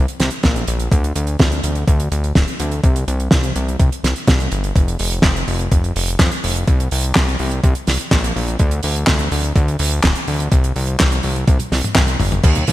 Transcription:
0.08 closed hi-hat medium
0.20 0.30 C2 medium
0.20 snare medium
0.20 closed hi-hat medium
0.31 closed hi-hat medium
0.43 0.65 A#1 loud
0.43 kick loud
0.43 snare loud
0.43 closed hi-hat medium
0.56 closed hi-hat medium
0.68 0.89 A#1 medium
0.68 closed hi-hat medium
0.80 closed hi-hat medium
0.92 1.13 D2 loud
0.92 kick loud
0.92 closed hi-hat medium
1.04 closed hi-hat medium
1.16 1.37 D2 medium
1.16 closed hi-hat medium
1.27 closed hi-hat medium
1.39 1.61 D2 medium
1.39 kick loud
1.39 snare loud
1.39 closed hi-hat medium
1.52 closed hi-hat soft
1.64 1.85 D2 medium
1.64 closed hi-hat medium
1.75 closed hi-hat medium
1.87 2.09 D2 medium
1.87 kick loud
1.87 closed hi-hat medium
2.00 closed hi-hat medium
2.12 2.33 D2 loud
2.12 closed hi-hat medium
2.24 closed hi-hat soft
2.35 2.46 D1 loud
2.35 kick loud
2.35 snare loud
2.35 closed hi-hat medium
2.48 closed hi-hat soft
2.60 2.81 D2 loud
2.60 closed hi-hat medium
2.72 closed hi-hat medium
2.84 3.05 C2 loud
2.84 kick loud
2.84 closed hi-hat medium
2.96 closed hi-hat medium
3.08 3.29 C2 loud
3.08 closed hi-hat medium
3.20 closed hi-hat soft
3.31 3.53 C2 medium
3.31 kick loud
3.31 snare loud
3.31 closed hi-hat medium
3.43 closed hi-hat medium
3.56 3.77 C2 medium
3.56 closed hi-hat medium
3.68 closed hi-hat soft
3.79 3.90 C2 medium
3.79 kick loud
3.79 closed hi-hat medium
3.92 closed hi-hat medium
4.04 4.14 C2 medium
4.04 snare medium
4.04 closed hi-hat medium
4.16 closed hi-hat soft
4.27 4.49 C2 medium
4.27 kick loud
4.27 snare loud
4.27 closed hi-hat medium
4.40 closed hi-hat medium
4.52 4.73 G1 medium
4.52 closed hi-hat medium
4.64 closed hi-hat medium
4.76 4.97 F1 loud
4.76 kick loud
4.76 closed hi-hat medium
4.88 closed hi-hat medium
4.99 5.21 F1 medium
4.99 open hi-hat loud
5.12 closed hi-hat medium
5.22 5.45 F1 medium
5.22 kick loud
5.22 snare loud
5.22 clap medium
5.22 closed hi-hat medium
5.36 closed hi-hat soft
5.48 5.69 F1 medium
5.48 open hi-hat loud
5.59 closed hi-hat medium
5.71 5.93 F1 medium
5.71 kick loud
5.71 closed hi-hat medium
5.84 closed hi-hat soft
5.96 6.17 F1 loud
5.96 open hi-hat loud
6.09 closed hi-hat medium
6.19 6.30 F2 loud
6.19 kick loud
6.19 snare loud
6.19 clap loud
6.19 closed hi-hat medium
6.32 closed hi-hat medium
6.44 6.65 F1 loud
6.44 open hi-hat loud
6.55 closed hi-hat medium
6.67 6.89 C2 loud
6.67 kick loud
6.67 closed hi-hat medium
6.80 closed hi-hat medium
6.91 7.13 C2 loud
6.91 open hi-hat loud
7.04 closed hi-hat medium
7.15 7.37 C2 medium
7.15 kick loud
7.15 snare loud
7.15 clap medium
7.15 closed hi-hat medium
7.29 closed hi-hat soft
7.39 7.61 C2 medium
7.39 open hi-hat loud
7.51 closed hi-hat medium
7.63 7.74 C2 medium
7.63 kick loud
7.63 closed hi-hat medium
7.75 closed hi-hat medium
7.87 7.98 C2 medium
7.87 snare medium
7.87 open hi-hat loud
7.99 closed hi-hat medium
8.11 8.33 A#1 loud
8.11 kick loud
8.11 snare loud
8.11 clap loud
8.11 closed hi-hat medium
8.24 closed hi-hat medium
8.36 8.57 A#1 medium
8.36 open hi-hat medium
8.48 closed hi-hat medium
8.59 8.81 D2 loud
8.59 kick loud
8.59 closed hi-hat medium
8.71 closed hi-hat medium
8.83 9.05 D2 medium
8.83 open hi-hat loud
8.96 closed hi-hat medium
9.07 9.29 D2 medium
9.07 kick loud
9.07 snare loud
9.07 clap loud
9.07 closed hi-hat medium
9.19 closed hi-hat medium
9.32 9.53 D2 medium
9.32 open hi-hat loud
9.44 closed hi-hat medium
9.56 9.77 D2 medium
9.56 kick loud
9.56 closed hi-hat medium
9.68 closed hi-hat medium
9.79 10.00 D2 loud
9.79 open hi-hat loud
9.91 closed hi-hat medium
10.03 10.14 D1 loud
10.03 kick loud
10.03 snare loud
10.03 clap medium
10.03 closed hi-hat medium
10.15 closed hi-hat medium
10.28 10.49 D2 loud
10.28 open hi-hat loud
10.40 closed hi-hat medium
10.52 10.73 C2 loud
10.52 kick loud
10.52 closed hi-hat medium
10.64 closed hi-hat medium
10.76 10.97 C2 loud
10.76 open hi-hat loud
10.87 closed hi-hat medium
10.99 11.21 C2 medium
10.99 kick loud
10.99 snare loud
10.99 clap loud
10.99 closed hi-hat medium
11.12 closed hi-hat medium
11.23 11.45 C2 medium
11.23 open hi-hat medium
11.36 closed hi-hat medium
11.47 11.58 C2 medium
11.47 kick loud
11.47 closed hi-hat medium
11.47 high tom medium
11.59 closed hi-hat medium
11.59 high tom medium
11.72 11.82 C2 medium
11.72 snare medium
11.72 open hi-hat loud
11.84 closed hi-hat medium
11.84 mid tom medium
11.95 12.17 C2 loud
11.95 kick loud
11.95 snare loud
11.95 clap loud
11.95 closed hi-hat medium
11.95 mid tom medium
12.07 closed hi-hat medium
12.20 12.41 G1 loud
12.20 mid tom loud
12.20 open hi-hat medium
12.32 closed hi-hat medium
12.32 mid tom medium
12.43 12.65 D#2 loud
12.43 kick loud
12.43 closed hi-hat medium
12.43 crash loud
12.55 closed hi-hat medium
12.55 high tom medium
12.67 12.72 D#2 medium
12.67 open hi-hat loud
12.67 high tom medium

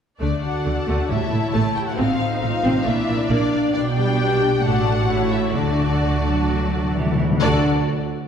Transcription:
0.20 0.29 D2 soft
0.20 0.29 D3 soft
0.20 1.12 D3 soft
0.20 0.42 A3 soft
0.20 0.30 D4 soft
0.20 1.06 D4 soft
0.20 0.41 D5 soft
0.20 1.06 D5 soft
0.20 1.95 A5 soft
0.43 1.12 D4 soft
0.43 1.09 F#4 medium
0.43 1.09 F#5 soft
0.66 0.74 D2 soft
0.66 0.74 D3 soft
0.66 0.74 A3 soft
0.66 2.89 A4 soft
0.87 0.96 D2 soft
0.87 0.95 D3 soft
0.87 1.09 A3 soft
0.87 1.12 D5 soft
1.08 1.17 A1 soft
1.08 1.97 A2 soft
1.08 1.72 A2 medium
1.08 1.18 A2 soft
1.08 1.18 G3 soft
1.08 1.98 E4 soft
1.08 1.55 E4 medium
1.08 1.98 C#5 soft
1.08 1.54 E5 medium
1.30 1.39 A1 soft
1.30 1.41 A2 soft
1.30 1.38 A3 soft
1.30 2.88 A3 soft
1.52 1.62 A1 medium
1.52 1.63 A2 medium
1.52 1.75 A3 medium
1.52 1.65 A4 medium
1.52 2.00 C#5 soft
1.52 1.75 A5 medium
1.75 2.00 E4 soft
1.75 1.88 G4 medium
1.75 1.81 G5 medium
1.87 2.00 F#4 medium
1.87 1.98 F#5 soft
1.97 2.06 A1 medium
1.97 2.89 A2 soft
1.97 2.07 A2 medium
1.97 2.19 C4 medium
1.97 2.86 D#4 soft
1.97 2.41 F4 medium
1.97 2.85 C5 soft
1.97 3.71 F5 soft
1.97 2.41 F5 medium
2.21 2.89 C4 soft
2.41 2.51 A1 soft
2.41 2.51 A2 soft
2.41 2.49 C4 soft
2.41 2.86 F4 medium
2.41 2.89 C5 soft
2.41 2.86 F5 medium
2.63 2.72 A1 medium
2.63 2.73 A2 medium
2.63 2.85 C4 medium
2.63 2.89 D#4 soft
2.85 2.94 A#1 soft
2.85 3.77 A#2 medium
2.85 2.95 A#2 soft
2.85 2.93 A3 soft
2.85 3.74 D4 medium
2.85 3.29 E4 medium
2.85 3.74 D5 medium
2.85 3.31 E5 medium
3.08 3.16 A#1 soft
3.08 3.17 A#2 soft
3.08 3.17 A#3 medium
3.08 3.77 A#3 soft
3.29 3.38 A#1 medium
3.29 3.39 A#2 medium
3.29 3.51 A#3 medium
3.29 3.73 D4 medium
3.29 3.72 D5 medium
3.29 4.20 D5 soft
3.53 4.42 D4 soft
3.73 4.60 B1 medium
3.73 4.61 B2 medium
3.73 4.67 B2 medium
3.73 3.85 D4 medium
3.73 4.61 D4 medium
3.73 3.81 D5 medium
3.73 4.61 D5 medium
3.73 4.60 G5 medium
3.97 4.67 G3 medium
3.97 4.63 G4 medium
3.97 4.63 G5 medium
4.21 4.87 D5 soft
4.43 4.86 D4 soft
4.62 5.55 A1 medium
4.62 5.09 A2 medium
4.62 5.56 A2 medium
4.62 5.09 A3 medium
4.62 5.09 D4 medium
4.62 5.31 F#4 medium
4.62 5.08 D5 medium
4.62 5.32 F#5 medium
4.62 5.08 A5 medium
4.88 5.12 D4 soft
4.88 5.12 D5 soft
5.09 5.58 A2 medium
5.09 5.54 A3 soft
5.09 5.55 E4 soft
5.09 5.55 C#5 medium
5.09 5.53 A5 soft
5.32 5.56 E4 medium
5.32 5.58 E4 soft
5.32 5.58 C#5 soft
5.32 5.55 E5 medium
5.54 7.22 D2 soft
5.54 5.97 D3 soft
5.54 7.36 D3 soft
5.54 7.19 A3 soft
5.54 6.93 D4 medium
5.54 7.23 F#4 soft
5.54 7.22 D5 soft
5.54 6.93 D5 medium
5.54 7.19 A5 soft
5.63 5.69 D3 soft
5.71 5.77 D3 soft
5.78 5.86 D3 soft
5.78 6.70 A3 soft
5.87 5.93 D3 soft
5.94 6.00 D3 soft
6.01 6.07 D3 soft
6.01 6.24 D3 medium
6.01 6.94 D5 soft
6.09 6.15 D3 soft
6.24 6.32 D3 soft
6.24 6.96 F#3 medium
6.24 7.18 F#4 soft
6.34 6.42 D3 soft
6.43 6.50 D3 soft
6.48 6.58 D3 medium
6.48 7.41 D4 soft
6.59 6.66 D3 medium
6.67 6.74 D3 medium
6.71 7.39 A3 soft
6.76 6.83 D3 medium
6.84 6.90 D3 medium
6.91 6.98 D3 medium
6.91 7.41 D5 soft
6.96 7.05 D3 medium
6.96 7.43 E3 soft
7.06 7.14 D3 medium
7.15 7.22 D3 medium
7.19 7.30 D3 medium
7.19 7.41 F#4 soft
7.31 7.38 D3 medium
7.37 7.69 D3 medium
7.37 7.69 A3 medium
7.41 7.70 D2 medium
7.41 7.70 D3 medium
7.41 7.66 D3 medium
7.41 7.69 D4 medium
7.41 7.63 D4 medium
7.41 7.69 F#4 medium
7.41 7.70 F#4 medium
7.41 7.71 A4 medium
7.41 7.70 D5 medium
7.41 7.70 A5 medium
7.45 7.69 D5 medium
7.45 7.70 F#5 medium

